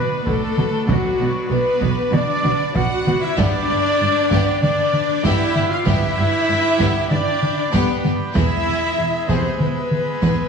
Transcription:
Already playing: B3 D4 F#4 B4 D5
0.26 B1 B2 A3 B3 F#4 A4, taiko
0.57 B1 B2 B3 F#4, taiko mid
0.87 B1 B2 F#3 B3 F#4, taiko
1.19 B1 B2 B3 F#4
1.50 B1 B2 B3 F#4 B4
1.81 B1 B2 B3 F#4, taiko
2.12 B1 B2 B3 D4 F#4 D5, taiko mid
2.44 B1 B2 B3 F#4, taiko mid
2.74 B1 B2 B3 F#4 F#5, taiko
3.05 B1 B2 B3 F#4, taiko mid
3.20 E4 E5
3.37 G1 G2 B3 D4 G4 B4 D5 G5, taiko
3.68 G1 G2 B3 G4
4.00 G1 G2 G3 D4
4.31 G1 G2 B3 G4, taiko
4.61 G1 G2 B3 D4 G4 D5, taiko mid
4.93 taiko mid
5.24 G1 G2 B3 E4 G4 E5, taiko
5.55 G1 G2 B3 G4, taiko mid
5.71 F4 F5
5.86 G1 G2 B3 E4 G4 E5, taiko
6.17 G1 G2 B3 G4
6.49 G1 G2 G3 D4
6.79 G1 G2 B3 G4, taiko
7.10 G1 G2 B3 D4 G4 D5, taiko mid
7.43 taiko mid
7.72 G1 G2 B3 G4 B4, taiko
8.04 G1 G2 B3 G4, taiko mid
8.35 E1 E2 G#3 B3 E4 G#4 E5 B5, taiko
8.67 E1 E2 B3 G#4
8.97 E1 E2 G#3 E4
9.28 E1 E2 C3 B3 G#4 C5, taiko
9.59 E1 E2 B3 G#4 B4, taiko mid
9.91 taiko mid
10.22 E1 E2 B3 G#4, taiko

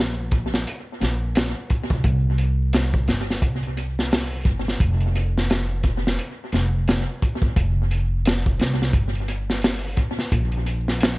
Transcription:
Already playing: A#1
0.31 kick, closed hi-hat
0.54 snare
0.67 closed hi-hat
1.01 A#1, snare, closed hi-hat
1.35 snare, closed hi-hat
1.70 kick, closed hi-hat
1.90 C2, kick
2.04 C2, kick, closed hi-hat
2.38 closed hi-hat
2.73 snare, closed hi-hat
2.94 kick
3.08 G1, snare, closed hi-hat
3.30 snare
3.42 C2, kick, closed hi-hat
3.63 closed hi-hat
3.77 closed hi-hat
3.99 snare
4.12 snare, open hi-hat
4.45 G1, kick, closed hi-hat
4.68 snare
4.80 F1, kick, closed hi-hat
5.00 closed hi-hat
5.15 closed hi-hat
5.38 snare
5.50 snare, closed hi-hat
5.83 kick, closed hi-hat
6.07 snare
6.19 closed hi-hat
6.52 F1, snare, closed hi-hat
6.88 snare, closed hi-hat
7.22 kick, closed hi-hat
7.42 G1, kick
7.56 F1, kick, closed hi-hat
7.91 closed hi-hat
8.25 snare, closed hi-hat
8.46 kick
8.59 C2, snare, closed hi-hat
8.82 snare
8.93 G1, kick, closed hi-hat
9.15 closed hi-hat
9.28 closed hi-hat
9.50 snare
9.62 snare, open hi-hat
9.97 kick, closed hi-hat
10.19 snare
10.32 A#1, kick, closed hi-hat
10.52 closed hi-hat
10.66 closed hi-hat
10.88 snare
11.01 snare, closed hi-hat

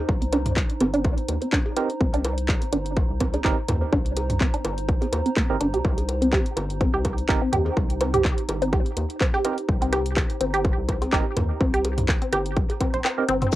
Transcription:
Already playing: D#4 C5 A#5
0.09 C2, kick, low bongo
0.22 C4, closed hi-hat
0.33 D4, closed hi-hat, low bongo
0.46 closed hi-hat, mid tom
0.57 kick, clap, low bongo
0.70 closed hi-hat
0.81 G1 C4, closed hi-hat, cowbell, low bongo
0.94 D4, closed hi-hat
1.05 C2, kick, closed hi-hat, low bongo
1.18 closed hi-hat
1.29 D#2, closed hi-hat, low bongo
1.42 C4, closed hi-hat
1.53 D4, kick, clap, low bongo
1.66 cowbell
1.77 C4 D#4 G4 A#4, closed hi-hat, low bongo
1.90 closed hi-hat
2.01 C2 C4, kick, low bongo
2.14 D4, closed hi-hat
2.25 closed hi-hat, low bongo
2.38 closed hi-hat
2.49 kick, clap, cowbell, low bongo
2.62 C4, closed hi-hat
2.73 G1 D4, closed hi-hat, low bongo
2.86 closed hi-hat
2.97 kick, closed hi-hat, low bongo
3.10 C2
3.20 C4, kick, closed hi-hat, low bongo
3.34 D4, closed hi-hat, cowbell
3.45 G1 C4 D#4 G4 A#4, kick, clap, low bongo
3.69 D#2, closed hi-hat, mid tom, low bongo
3.82 C4
3.93 C2 D4, kick, low bongo
4.06 closed hi-hat
4.17 closed hi-hat, cowbell, low bongo
4.30 closed hi-hat, mid tom
4.41 C4, kick, clap, low bongo
4.54 D4, closed hi-hat
4.65 G1, closed hi-hat, low bongo
4.78 closed hi-hat
4.89 C2, kick, closed hi-hat, low bongo
5.02 C4, closed hi-hat, cowbell
5.12 D#2, closed hi-hat, low bongo
5.26 C4, closed hi-hat
5.37 A#3, kick, clap, low bongo
5.50 G1 C4 D#4 G4 A#4
5.61 G1 D4, closed hi-hat, low bongo
5.74 C2 G4, closed hi-hat
5.85 C2, kick, low bongo
5.98 closed hi-hat, cowbell
6.09 closed hi-hat, low bongo
6.22 C4, closed hi-hat
6.33 G4, kick, clap, low bongo
6.46 closed hi-hat
6.57 G1, closed hi-hat, low bongo
6.70 closed hi-hat
6.81 C4, kick, closed hi-hat, cowbell, low bongo
6.94 C2 G4
7.05 kick, closed hi-hat, low bongo
7.18 closed hi-hat
7.29 G1 C4 D#4 G4 A#4, kick, clap, low bongo
7.42 C4
7.53 D#2 G4, closed hi-hat, mid tom, low bongo
7.66 cowbell
7.77 C2, kick, low bongo
7.90 closed hi-hat
8.01 C4, closed hi-hat, low bongo
8.14 G4, closed hi-hat, mid tom
8.25 kick, clap, low bongo
8.38 closed hi-hat
8.49 G1, closed hi-hat, cowbell, low bongo
8.62 C4, closed hi-hat
8.73 C2 G4, kick, closed hi-hat, low bongo
8.86 closed hi-hat
8.97 D#2, closed hi-hat, low bongo
9.10 closed hi-hat
9.21 C4, kick, clap, low bongo
9.34 G4, cowbell
9.45 C4 D#4 G4 A#4, closed hi-hat, low bongo
9.58 closed hi-hat
9.69 C2, kick, low bongo
9.82 C4, closed hi-hat
9.93 G4, closed hi-hat, low bongo
10.06 closed hi-hat
10.17 kick, clap, cowbell, low bongo
10.30 closed hi-hat
10.41 G1 C4, closed hi-hat, low bongo
10.54 G4, closed hi-hat
10.65 kick, closed hi-hat, low bongo
10.78 C2
10.89 kick, closed hi-hat, low bongo
11.02 C4, closed hi-hat, cowbell
11.13 G1 C4 D#4 G4 A#4, kick, clap, low bongo
11.37 D#2, closed hi-hat, mid tom, low bongo
11.61 C2 C4, kick, low bongo
11.74 G4, closed hi-hat
11.85 closed hi-hat, cowbell, low bongo
11.98 closed hi-hat, mid tom
12.09 kick, clap, low bongo
12.22 C4, closed hi-hat
12.33 G1 G4, closed hi-hat, low bongo
12.46 closed hi-hat
12.57 C2, kick, closed hi-hat, low bongo
12.70 closed hi-hat, cowbell
12.81 C4, kick, closed hi-hat, low bongo
12.94 A#1 C5, closed hi-hat
13.05 C4, clap, low bongo
13.18 C4 D#4 G4 A#4
13.29 G1 C4, closed hi-hat, low bongo
13.42 C4, closed hi-hat, mid tom
13.52 shekere

